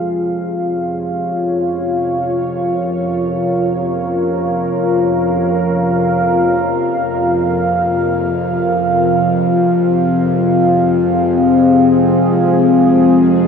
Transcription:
0, 0, Header, 1, 3, 480
1, 0, Start_track
1, 0, Tempo, 500000
1, 12935, End_track
2, 0, Start_track
2, 0, Title_t, "Ambient pad"
2, 0, Program_c, 0, 92
2, 0, Note_on_c, 0, 65, 66
2, 0, Note_on_c, 0, 68, 65
2, 0, Note_on_c, 0, 73, 55
2, 0, Note_on_c, 0, 77, 57
2, 1066, Note_on_c, 0, 70, 68
2, 1128, Note_off_c, 0, 68, 0
2, 7815, Note_on_c, 0, 60, 60
2, 7837, Note_off_c, 0, 73, 0
2, 8946, Note_on_c, 0, 68, 72
2, 11066, Note_off_c, 0, 70, 0
2, 12935, Note_off_c, 0, 60, 0
2, 12935, Note_off_c, 0, 65, 0
2, 12935, Note_off_c, 0, 68, 0
2, 12935, Note_off_c, 0, 77, 0
2, 12935, End_track
3, 0, Start_track
3, 0, Title_t, "Synth drone"
3, 0, Program_c, 1, 95
3, 0, Note_on_c, 1, 41, 67
3, 0, Note_on_c, 1, 48, 65
3, 12935, Note_off_c, 1, 41, 0
3, 12935, Note_off_c, 1, 48, 0
3, 12935, End_track
0, 0, End_of_file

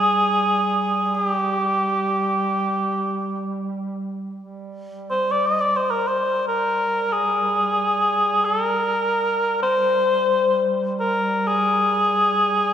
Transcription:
0, 0, Header, 1, 3, 480
1, 0, Start_track
1, 0, Tempo, 500000
1, 12225, End_track
2, 0, Start_track
2, 0, Title_t, "Cor anglais"
2, 0, Program_c, 0, 69
2, 0, Note_on_c, 0, 68, 79
2, 1096, Note_off_c, 0, 68, 0
2, 1096, Note_on_c, 0, 68, 58
2, 1231, Note_off_c, 0, 68, 0
2, 1231, Note_on_c, 0, 67, 58
2, 3375, Note_off_c, 0, 67, 0
2, 4896, Note_on_c, 0, 72, 63
2, 5102, Note_on_c, 0, 74, 62
2, 5116, Note_off_c, 0, 72, 0
2, 5248, Note_on_c, 0, 75, 68
2, 5262, Note_off_c, 0, 74, 0
2, 5384, Note_on_c, 0, 74, 66
2, 5398, Note_off_c, 0, 75, 0
2, 5534, Note_on_c, 0, 72, 65
2, 5549, Note_off_c, 0, 74, 0
2, 5670, Note_on_c, 0, 70, 61
2, 5684, Note_off_c, 0, 72, 0
2, 5829, Note_on_c, 0, 72, 68
2, 5844, Note_off_c, 0, 70, 0
2, 6199, Note_off_c, 0, 72, 0
2, 6216, Note_on_c, 0, 70, 63
2, 6844, Note_on_c, 0, 68, 65
2, 6858, Note_off_c, 0, 70, 0
2, 8110, Note_on_c, 0, 69, 68
2, 8125, Note_off_c, 0, 68, 0
2, 8293, Note_off_c, 0, 69, 0
2, 8293, Note_on_c, 0, 70, 68
2, 9235, Note_off_c, 0, 70, 0
2, 9240, Note_on_c, 0, 72, 79
2, 10217, Note_off_c, 0, 72, 0
2, 10559, Note_on_c, 0, 70, 70
2, 11016, Note_on_c, 0, 68, 75
2, 11031, Note_off_c, 0, 70, 0
2, 12225, Note_off_c, 0, 68, 0
2, 12225, End_track
3, 0, Start_track
3, 0, Title_t, "Duduk"
3, 0, Program_c, 1, 69
3, 0, Note_on_c, 1, 55, 35
3, 4016, Note_off_c, 1, 55, 0
3, 4179, Note_on_c, 1, 55, 33
3, 12225, Note_off_c, 1, 55, 0
3, 12225, End_track
0, 0, End_of_file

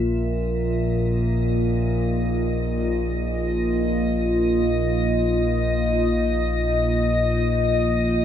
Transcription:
0, 0, Header, 1, 4, 480
1, 0, Start_track
1, 0, Tempo, 500000
1, 7919, End_track
2, 0, Start_track
2, 0, Title_t, "Ambient pad"
2, 0, Program_c, 0, 92
2, 0, Note_on_c, 0, 76, 73
2, 121, Note_on_c, 0, 75, 74
2, 183, Note_off_c, 0, 76, 0
2, 7919, Note_off_c, 0, 75, 0
2, 7919, End_track
3, 0, Start_track
3, 0, Title_t, "Analog synth pad"
3, 0, Program_c, 1, 89
3, 0, Note_on_c, 1, 58, 88
3, 0, Note_on_c, 1, 65, 88
3, 0, Note_on_c, 1, 70, 71
3, 1340, Note_on_c, 1, 75, 83
3, 1372, Note_off_c, 1, 70, 0
3, 7919, Note_off_c, 1, 58, 0
3, 7919, Note_off_c, 1, 65, 0
3, 7919, Note_off_c, 1, 75, 0
3, 7919, End_track
4, 0, Start_track
4, 0, Title_t, "Synth drone"
4, 0, Program_c, 2, 95
4, 0, Note_on_c, 2, 34, 65
4, 0, Note_on_c, 2, 46, 59
4, 7919, Note_off_c, 2, 34, 0
4, 7919, Note_off_c, 2, 46, 0
4, 7919, End_track
0, 0, End_of_file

